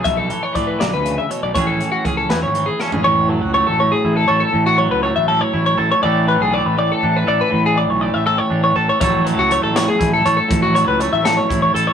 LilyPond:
<<
  \new Staff \with { instrumentName = "Clean electric guitar" } { \time 6/8 \key fis \minor \tempo 4. = 80 e''16 a'8 cis''16 d''16 b'16 d''16 b'8 e''16 cis''16 d''16 | cis''16 a'8 fis'16 gis'16 a'16 b'16 cis''8 gis'16 a'16 gis'16 | cis''8 a'16 fis'16 cis''16 a'16 cis''16 gis'8 a'16 cis''16 a'16~ | a'16 fis'16 cis''16 b'16 cis''16 e''16 a'16 cis''8 cis''16 a'16 cis''16 |
d''8 b'16 gis'16 d''16 b'16 d''16 a'8 b'16 d''16 b'16~ | b'16 gis'16 d''16 cis''16 d''16 e''16 a'16 cis''8 cis''16 a'16 cis''16 | cis''8 a'16 fis'16 cis''16 a'16 cis''16 gis'8 a'16 cis''16 a'16~ | a'16 fis'16 cis''16 b'16 cis''16 e''16 a'16 cis''8 cis''16 a'16 cis''16 | }
  \new Staff \with { instrumentName = "Clean electric guitar" } { \time 6/8 \key fis \minor << { a4 a2 | <e cis' e' gis'>4 cis'8 e'4 cis'8 | r4 a4 e'8 a'8 | r4 a4 e'8 a'8 |
<e a d' a'>4 a4 d'8 a'8 | r4 a4 d'8 a'8 | <fis a e' a'>4 a4 e'8 a'8 | r4 a4 e'8 a'8 | } \\ { b,8 e4 d8 cis8 b,8 | a,8 e4. e4 | a,8 fis4 a,4. | a,8 fis4 a,4. |
a,8 e4 a,4. | a,8 e4 a,4. | a,8 fis4 a,4. | a,8 fis4 a,4. | } >> }
  \new Staff \with { instrumentName = "Fingered electric bass" } { \clef bass \time 6/8 \key fis \minor b,,8 r8 a,8 b,,16 d,8 r8 b,,16 | a,,8 r8 cis,8 e,16 gis,,8 r8 a,,16 | a,,8. cis,8 a,,8 r16 a,,8 a,,16 r16 | a,,8. cis,8 a,,8 r16 a,,8 a,,16 r16 |
a,,8. b,,8 a,,8 r16 a,,8 a,,16 r16 | a,,8. b,,8 a,,8 r16 a,,8 a,,16 r16 | a,,8. cis,8 a,,8 r16 a,,8 a,,16 r16 | a,,8. cis,8 a,,8 r16 a,,8 a,,16 r16 | }
  \new DrumStaff \with { instrumentName = "Drums" } \drummode { \time 6/8 <hh bd>8 hh8 <hh bd>8 <hh sn>8 hh8 hh8 | <hh bd>8 hh8 <hh bd>8 <hh sn>8 hh8 sn16 tomfh16 | r4. r4. | r4. r4. |
r4. r4. | r4. r4. | <hh bd>8 hh8 hh8 <hh sn>8 <hh bd>8 hh8 | <hh bd>8 hh8 hh8 <hh sn>8 <hh bd>8 hh8 | }
>>